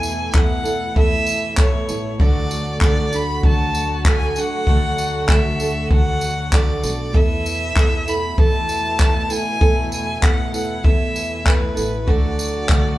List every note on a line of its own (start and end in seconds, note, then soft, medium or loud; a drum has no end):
0.00 0.31 E2 loud
0.00 2.17 B2 medium
0.00 0.32 E3 medium
0.00 2.16 E3 medium
0.00 4.63 A3 medium
0.00 0.32 B3 medium
0.00 0.33 E4 medium
0.00 2.16 E4 medium
0.00 0.35 A4 medium
0.00 0.31 G#5 loud
0.00 tambourine medium
0.31 0.93 E2 loud
0.31 0.65 E3 medium
0.31 0.64 B3 medium
0.31 0.64 E4 medium
0.31 0.40 G#5 medium
0.31 kick loud
0.31 clap loud
0.35 0.62 A4 medium
0.35 0.98 F#5 loud
0.63 0.94 B3 soft
0.63 0.95 E4 medium
0.63 0.95 A4 medium
0.63 tambourine medium
0.94 1.85 E2 loud
0.94 1.55 E3 medium
0.94 1.56 B3 medium
0.94 1.56 E4 medium
0.94 1.58 A4 medium
0.94 kick loud
0.99 1.55 E5 loud
1.26 tambourine medium
1.56 1.88 E3 medium
1.56 1.89 B3 medium
1.56 1.88 E4 medium
1.56 1.87 A4 medium
1.56 kick loud
1.56 clap loud
1.61 2.17 C#5 medium
1.88 2.18 A1 medium
1.88 2.20 B3 soft
1.88 2.20 E4 medium
1.88 2.20 A4 medium
1.88 tambourine medium
2.20 2.78 D2 loud
2.20 2.82 D3 medium
2.20 7.10 D3 medium
2.20 2.80 F#3 medium
2.20 7.10 F#3 medium
2.20 2.82 A3 medium
2.20 2.81 D4 loud
2.20 7.10 F#4 loud
2.20 2.83 A4 loud
2.20 2.79 D5 loud
2.20 kick loud
2.51 tambourine medium
2.81 3.40 D2 loud
2.81 3.12 F#3 medium
2.81 3.13 A3 medium
2.81 3.13 D4 medium
2.81 3.11 A4 medium
2.81 3.16 D5 loud
2.81 kick loud
2.81 clap loud
3.12 3.43 A3 soft
3.12 3.43 D4 medium
3.12 3.43 A4 medium
3.12 3.45 B5 loud
3.12 tambourine medium
3.43 4.32 D2 medium
3.43 4.04 F#3 medium
3.43 4.06 A3 medium
3.43 4.05 D4 medium
3.43 4.07 A4 medium
3.43 4.03 A5 loud
3.43 kick loud
3.75 tambourine medium
4.05 4.36 F#3 medium
4.05 4.37 A3 medium
4.05 4.36 D4 medium
4.05 4.35 A4 medium
4.05 4.41 G#5 loud
4.05 kick loud
4.05 clap loud
4.36 4.67 A3 soft
4.36 4.67 D4 medium
4.36 4.67 A4 medium
4.36 5.32 F#5 loud
4.36 tambourine medium
4.67 5.25 D2 loud
4.67 5.29 D3 medium
4.67 5.28 F#3 medium
4.67 7.12 A3 medium
4.67 5.30 A3 medium
4.67 5.29 D4 medium
4.67 5.30 A4 medium
4.67 kick loud
4.98 tambourine medium
5.29 5.86 D2 loud
5.29 5.60 F#3 medium
5.29 5.60 A3 medium
5.29 5.60 D4 medium
5.29 5.59 A4 medium
5.29 5.91 E5 medium
5.29 kick loud
5.29 clap loud
5.60 5.91 A3 soft
5.60 5.91 D4 medium
5.60 5.91 A4 medium
5.60 tambourine medium
5.91 6.79 D2 loud
5.91 6.50 F#3 medium
5.91 6.52 A3 medium
5.91 6.52 D4 medium
5.91 6.53 A4 medium
5.91 6.56 F#5 loud
5.91 kick loud
6.21 tambourine medium
6.52 6.83 F#3 medium
6.52 6.83 A3 medium
6.52 6.82 D4 medium
6.52 6.81 A4 medium
6.52 7.18 D5 medium
6.52 kick loud
6.52 clap loud
6.82 7.12 B1 medium
6.82 7.13 A3 soft
6.82 7.14 D4 medium
6.82 7.13 A4 medium
6.82 tambourine medium
7.13 7.72 E2 loud
7.13 12.04 B2 medium
7.13 7.74 E3 medium
7.13 12.04 E3 medium
7.13 12.04 A3 medium
7.13 7.75 B3 medium
7.13 12.03 E4 medium
7.13 7.76 E4 medium
7.13 7.77 A4 loud
7.13 8.10 E5 loud
7.13 kick loud
7.46 tambourine medium
7.75 8.34 E2 loud
7.75 8.07 E3 medium
7.75 8.07 B3 medium
7.75 8.07 E4 medium
7.75 8.06 A4 medium
7.75 kick loud
7.75 clap loud
8.08 8.37 B3 soft
8.08 8.37 E4 soft
8.08 8.38 A4 medium
8.08 8.40 B5 loud
8.08 tambourine medium
8.37 9.26 E2 loud
8.37 8.96 E3 medium
8.37 8.97 B3 medium
8.37 8.98 E4 medium
8.37 8.99 A4 medium
8.37 9.33 A5 loud
8.37 kick loud
8.69 tambourine medium
8.98 9.29 E3 medium
8.98 9.30 B3 medium
8.98 9.29 E4 medium
8.98 9.27 A4 medium
8.98 kick loud
8.98 clap loud
9.29 9.59 B3 medium
9.29 9.59 E4 medium
9.29 9.60 A4 medium
9.29 9.93 G#5 loud
9.29 tambourine medium
9.59 10.19 E2 loud
9.59 10.20 E3 medium
9.59 10.20 B3 medium
9.59 10.21 E4 medium
9.59 10.23 A4 medium
9.59 kick loud
9.92 10.25 G#5 medium
9.92 tambourine medium
10.21 10.80 E2 loud
10.21 10.53 E3 medium
10.21 10.53 B3 medium
10.21 10.52 E4 medium
10.21 10.51 A4 medium
10.21 10.53 F#5 medium
10.21 kick loud
10.21 clap loud
10.52 10.83 B3 soft
10.52 10.83 E4 medium
10.52 10.84 A4 medium
10.52 10.86 F#5 medium
10.52 tambourine medium
10.83 11.73 E2 loud
10.83 11.42 E3 medium
10.83 11.43 B3 medium
10.83 11.44 E4 medium
10.83 11.46 A4 medium
10.83 11.50 E5 loud
10.83 kick loud
11.16 tambourine medium
11.44 11.76 E3 medium
11.44 11.76 B3 medium
11.44 11.75 E4 medium
11.44 11.73 A4 medium
11.44 kick loud
11.44 clap loud
11.49 12.12 B4 medium
11.75 12.06 A1 medium
11.75 12.07 B3 medium
11.75 12.07 E4 medium
11.75 12.07 A4 medium
11.75 tambourine medium
12.07 12.66 D2 loud
12.07 12.98 D3 medium
12.07 12.69 D3 medium
12.07 12.67 F#3 medium
12.07 12.98 F#3 medium
12.07 12.98 A3 medium
12.07 12.68 A3 medium
12.07 12.98 F#4 medium
12.07 12.69 F#4 medium
12.07 12.70 A4 loud
12.07 12.98 D5 medium
12.07 kick loud
12.39 tambourine medium
12.69 12.98 D2 loud
12.69 12.98 F#3 medium
12.69 12.98 A3 medium
12.69 12.98 F#4 medium
12.69 12.98 A4 medium
12.69 kick loud
12.69 clap loud